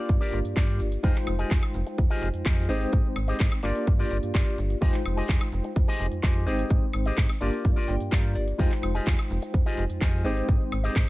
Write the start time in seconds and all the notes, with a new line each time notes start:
Already playing: A#3 D4 F4 G4 A#4 D5
0.09 G2, kick, closed hi-hat, shaker
0.21 G1 F4 G4 A#4 D5, open hi-hat
0.33 G1, open hi-hat, shaker
0.45 G2, closed hi-hat, shaker
0.56 G2 F4 G4 A#4 D5, kick, clap, closed hi-hat, shaker
0.80 G1, open hi-hat, shaker
0.92 closed hi-hat, shaker
1.03 F2 G#3 D#4 F4 G4 G#4 C5 D#5 G5, kick, closed hi-hat, shaker
1.16 clap
1.27 F1, muted clean electric guitar stroke, open hi-hat, high woodblock, shaker
1.39 F4 G4 G#4 D#5, closed hi-hat, shaker
1.51 F2, kick, clap, closed hi-hat, shaker
1.63 high woodblock
1.74 F1, open hi-hat, shaker
1.86 muted clean electric guitar stroke, closed hi-hat, shaker
1.98 F2, muted clean electric guitar stroke, kick, closed hi-hat, shaker
2.10 F4 G4 G#4 D#5, open hi-hat
2.22 F1, open hi-hat, shaker
2.34 F2, closed hi-hat, shaker
2.45 F2 F4 G4 G#4 D#5, kick, clap, closed hi-hat, shaker
2.68 G#1 G#3 C4 D#4 G4 G#4 C5 D#5 G5, open hi-hat, shaker
2.81 closed hi-hat, shaker
2.92 G#2, kick, closed hi-hat, shaker
3.05 G#1, shaker
3.16 G#1, muted clean electric guitar stroke, open hi-hat, high woodblock, shaker
3.28 G4 G#4 C5 D#5, closed hi-hat, shaker
3.40 G#2, kick, clap, closed hi-hat, shaker
3.52 high woodblock
3.63 G1 A#3 D4 F4 G4 A#4 D5, clap, open hi-hat, shaker
3.76 closed hi-hat, shaker
3.87 G2, kick, closed hi-hat, shaker
3.99 F4 G4 A#4 D5, open hi-hat
4.11 G1, open hi-hat, shaker
4.23 G2, closed hi-hat, shaker
4.34 G2 F4 G4 A#4 D5, kick, clap, closed hi-hat, shaker
4.58 G1, open hi-hat, shaker
4.70 closed hi-hat, shaker
4.81 F2 G#3 D#4 F4 G4 G#4 C5 D#5 G5, kick, closed hi-hat, shaker
4.94 clap
5.05 F1, muted clean electric guitar stroke, open hi-hat, high woodblock, shaker
5.17 F4 G4 G#4 D#5, closed hi-hat, shaker
5.29 F2, kick, clap, closed hi-hat, shaker
5.41 high woodblock
5.52 F1, open hi-hat, shaker
5.64 muted clean electric guitar stroke, closed hi-hat, shaker
5.76 F2, muted clean electric guitar stroke, kick, closed hi-hat, shaker
5.88 F4 G4 G#4 D#5, open hi-hat
6.00 F1, open hi-hat, shaker
6.12 F2, closed hi-hat, shaker
6.23 F2 F4 G4 G#4 D#5, kick, clap, closed hi-hat, shaker
6.46 G#1 G#3 C4 D#4 G4 G#4 C5 D#5 G5, open hi-hat, shaker
6.59 closed hi-hat, shaker
6.70 G#2, kick, closed hi-hat, shaker
6.83 G#1
6.93 G#1, muted clean electric guitar stroke, open hi-hat, high woodblock, shaker
7.06 G4 G#4 C5 D#5, closed hi-hat, shaker
7.17 G#2, kick, clap, closed hi-hat, shaker
7.29 high woodblock
7.40 G1 A#3 D4 F4 G4 A#4 D5, open hi-hat, shaker
7.53 closed hi-hat, shaker
7.65 G2, kick, closed hi-hat, shaker
7.76 G1 F4 G4 A#4 D5, open hi-hat
7.88 G1 G5, open hi-hat, shaker
8.00 G2, closed hi-hat, shaker
8.11 G2 F4 G4 A#4 D5 F5, kick, clap, closed hi-hat, shaker
8.35 G1 D5, open hi-hat, shaker
8.48 closed hi-hat, shaker
8.58 F2 G#3 D#4 F4 G4 G#4 C5 D#5 G5, kick, closed hi-hat, shaker
8.72 clap
8.82 F1, muted clean electric guitar stroke, open hi-hat, high woodblock, shaker
8.95 F4 G4 G#4 D#5, closed hi-hat, shaker
9.07 F2, kick, clap, closed hi-hat, shaker
9.19 high woodblock
9.30 F1, open hi-hat, shaker
9.42 muted clean electric guitar stroke, closed hi-hat, shaker
9.54 F2, muted clean electric guitar stroke, kick, closed hi-hat, shaker
9.66 F4 G4 G#4 D#5, open hi-hat
9.78 F1, open hi-hat, shaker
9.90 F2, closed hi-hat, shaker
10.01 F2 F4 G4 G#4 D#5, kick, clap, closed hi-hat, shaker
10.24 G#1 G#3 C4 D#4 G4 G#4 C5 D#5 G5, open hi-hat, shaker
10.37 closed hi-hat, shaker
10.49 G#2, kick, closed hi-hat, shaker
10.60 G#1, shaker
10.72 G#1, muted clean electric guitar stroke, open hi-hat, high woodblock, shaker
10.83 G4 G#4 C5 D#5, closed hi-hat, shaker
10.96 G#2, kick, clap, closed hi-hat, shaker